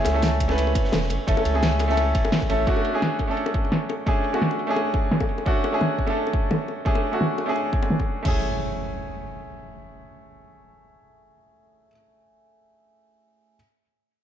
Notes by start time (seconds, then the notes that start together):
Already playing: A3 C#4 E4 G#4 A4
0.05 C#2, snare, closed hi-hat, ride, high bongo
0.14 A3 C#4 E4 A4
0.22 snare, closed hi-hat, ride, high bongo
0.40 kick, closed hi-hat, ride
0.48 A3 C#4 E4 B4, snare, high bongo
0.58 closed hi-hat, ride
0.67 high bongo
0.75 kick, closed hi-hat, ride
0.84 snare
0.92 E1, snare, closed hi-hat, ride, high bongo
1.02 snare
1.10 F#1, closed hi-hat, ride, high bongo
1.27 F#1 A3 C#4 E4 A4, kick, closed hi-hat, ride
1.37 high bongo
1.45 C#2, closed hi-hat, ride
1.54 A3 C#4 E4 G#4, high bongo
1.63 snare, closed hi-hat, ride
1.72 ride
1.79 closed hi-hat, ride, high bongo
1.88 A3 C#4 E4 A4, snare
1.97 closed hi-hat, ride, high bongo
2.15 kick, closed hi-hat, ride
2.24 ride, high bongo
2.32 snare, closed hi-hat, ride
2.42 kick, ride, high bongo
2.49 A1 A3 C#4 E4 A4, closed hi-hat, ride
2.67 A3 C#4 D4 F#4, kick, closed hi-hat
2.77 high bongo
2.85 closed hi-hat
2.93 A3 C#4 D4 G#4
3.02 snare, closed hi-hat, high bongo
3.19 kick, closed hi-hat, high bongo
3.27 A3 C#4 D4 A4
3.37 closed hi-hat
3.46 high bongo
3.54 kick, closed hi-hat
3.65 high bongo
3.72 snare, closed hi-hat
3.89 closed hi-hat, high bongo
4.06 A3 C#4 D4 G#4, kick, closed hi-hat, high bongo
4.24 closed hi-hat
4.33 A3 C#4 D4 F#4, high bongo
4.42 snare, closed hi-hat
4.51 high bongo
4.59 closed hi-hat
4.67 A3 C#4 D4 G#4
4.76 closed hi-hat, high bongo
4.94 kick, closed hi-hat, high bongo
5.12 snare, closed hi-hat
5.20 kick, high bongo
5.29 closed hi-hat
5.38 high bongo
5.46 A3 C#4 D4 F#4, kick, closed hi-hat
5.64 closed hi-hat, high bongo
5.72 A3 C#4 D4 G#4
5.81 snare, closed hi-hat, high bongo
5.99 kick, closed hi-hat
6.06 A3 C#4 D4 A4, high bongo
6.16 closed hi-hat
6.27 high bongo
6.33 kick, closed hi-hat
6.51 snare, closed hi-hat, high bongo
6.68 closed hi-hat, high bongo
6.85 A3 C#4 D4 G#4, kick
6.95 high bongo
7.12 A3 C#4 D4 F#4, high bongo
7.21 snare
7.38 high bongo
7.46 A3 C#4 D4 G#4
7.56 high bongo
7.73 kick
7.83 high bongo
7.90 snare
8.00 kick, high bongo
8.23 A3 C#4 E4, kick, crash, impact
8.28 G#4